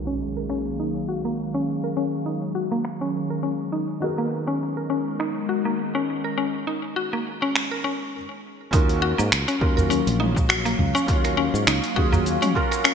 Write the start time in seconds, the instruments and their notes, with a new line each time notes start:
Already playing: felt piano D#3 C#4 F4 F#4 A#4, ambient pad D#3 F#3 A#3 D#4 F5, singing bowl G#3 G#4, impact
0.07 synth pluck C#4
0.37 synth pluck A#4
0.50 synth pluck C#4, finger snap
0.80 synth pluck D#4
1.09 synth pluck F#4
1.25 synth pluck A#3
1.54 synth pluck C#4
1.84 synth pluck A#4
1.97 synth pluck C#4
2.26 synth pluck D#4
2.55 synth pluck F#4
2.72 synth pluck A#3
2.85 finger snap
3.01 synth pluck C#4
3.30 synth pluck A#4
3.43 synth pluck C#4
3.72 synth pluck D#4
4.00 felt piano D#3 B3 D#4 G#4 A#4, synth pluck F#4
4.16 ambient pad G#3 B3, synth pluck A#3
4.22 ambient pad A#4
4.33 ambient pad D#4
4.47 synth pluck C#4
4.77 synth pluck A#4
4.90 synth pluck C#4
5.20 synth pluck D#4, finger snap
5.49 synth pluck F#4
5.65 synth pluck A#3
5.95 synth pluck C#4
6.24 synth pluck A#4
6.38 synth pluck C#4
6.67 synth pluck D#4
6.96 synth pluck F#4
7.13 synth pluck A#3
7.42 synth pluck C#4
7.56 finger snap
7.71 synth pluck A#4
7.84 synth pluck C#4
8.71 fretless electric bass D#2, felt piano C#4 F4 F#4, synth pluck D#4, kick, open hi-hat, cabasa
8.75 felt piano A#4
8.89 ambient pad A#3, open hi-hat, cabasa
8.98 ambient pad F#3, synth pluck F#4
9.12 ambient pad F5
9.18 fretless electric bass G#2, synth pluck A#3, cabasa
9.32 fretless electric bass C#2, finger snap, open hi-hat, cabasa
9.48 synth pluck C#4, open hi-hat, cabasa
9.60 fretless electric bass D#2, felt piano C#4 F4 F#4 A#4, kick
9.77 synth pluck A#4, udu, cabasa
9.90 synth pluck C#4, open hi-hat, cabasa
10.07 fretless electric bass A#1, open hi-hat, cabasa
10.20 synth pluck D#4, mid tom
10.36 kick, cabasa
10.49 synth pluck F#4, finger snap, open hi-hat, cabasa
10.65 synth pluck A#3, open hi-hat, cabasa
10.79 fretless electric bass C#2, udu
10.95 synth pluck C#4, cabasa
11.06 fretless electric bass D#2, felt piano C#4 F4 F#4, kick, open hi-hat, cabasa
11.10 felt piano C#5
11.24 synth pluck A#4, finger snap, open hi-hat, cabasa
11.37 synth pluck C#4
11.54 fretless electric bass G#2, cabasa
11.67 fretless electric bass C#2, synth pluck D#4, finger snap, open hi-hat, cabasa
11.84 open hi-hat, cabasa
11.95 fretless electric bass D#2, felt piano C#4 F4 F#4 G#4, synth pluck F#4, kick
12.13 synth pluck A#3, udu, cabasa
12.26 open hi-hat, cabasa
12.42 synth pluck C#4, mid tom, open hi-hat, cabasa
12.55 felt piano C#4 F4 F#4 A#4, kick
12.71 synth pluck A#4, finger snap, cabasa
12.84 synth pluck C#4, finger snap, open hi-hat, cabasa